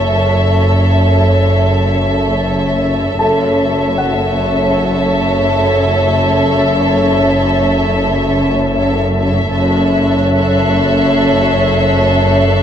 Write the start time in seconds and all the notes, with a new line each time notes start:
Already playing: F#1 F#2 A4 C#5 E5 B5
3.19 F#1 F#2 A4 C#5 E5 A5
3.98 F#5
9.51 F#1 F#2 A4 C#5 E5 F#6
10.31 C7